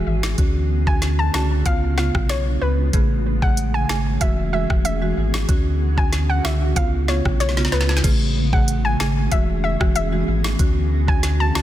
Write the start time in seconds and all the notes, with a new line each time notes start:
Already playing: F#4 G#4 E5
0.06 G#1
0.23 snare
0.38 D2 D3 C#4 F#4, kick, closed hi-hat
0.87 D3 C#4 F#4 G#5, kick
1.02 snare, closed hi-hat
1.19 A5
1.34 C#2 D3 C#4 F#4 A5, snare
1.65 C#2 C#3 B3 F4 F5, kick, closed hi-hat
1.97 C#3 B3 F4 F5, snare
2.15 B1, kick, cross-stick
2.29 C#5, snare, closed hi-hat
2.61 C#2 B4
2.93 A1 C#3 A3 G#4, kick, closed hi-hat
3.42 C#3 A3 G#4 F#5, kick
3.57 closed hi-hat
3.74 G#5
3.89 G#1 C#3 A3 G#4 G#5, snare
4.21 E1 E3 G#3 F#4 E5, kick, closed hi-hat
4.53 E3 G#3 F#4 E5
4.70 E1, kick, cross-stick
4.85 E5, closed hi-hat
5.02 E3 G#3 F#4
5.17 G#1
5.34 snare
5.48 D2 D3 C#4 F#4, kick, closed hi-hat
5.97 D3 C#4 F#4 G#5, kick
6.13 snare, closed hi-hat
6.30 F#5
6.44 C#2 D3 C#4 F#4 E5, snare
6.76 C#2 C#3 B3 F4 F5, kick, closed hi-hat
7.08 C#3 B3 F4 C#5, snare
7.25 B1, kick, cross-stick
7.40 C#5, snare, closed hi-hat
7.49 snare
7.57 C#3 B3 F4, snare
7.65 snare
7.72 C#2 B4, snare
7.81 snare
7.89 snare
7.97 snare
8.04 A1 C#3 A3 G#4, kick, closed hi-hat, crash
8.53 C#3 A3 G#4 F#5, kick
8.68 closed hi-hat
8.85 G#5
8.99 G#1 C#3 A3 G#4 G#5, snare
9.31 E1 E3 G#3 F#4 E5, kick, closed hi-hat
9.64 E5
9.80 E1 E3 G#3 F#4, kick, cross-stick
9.96 E5, closed hi-hat
10.12 E3 G#3 F#4
10.27 G#1
10.44 snare
10.59 D2 D3 C#4 F#4, kick, closed hi-hat
11.08 D3 C#4 F#4 G#5, kick
11.23 snare, closed hi-hat
11.40 A5
11.55 C#2 D3 C#4 F#4 A5, snare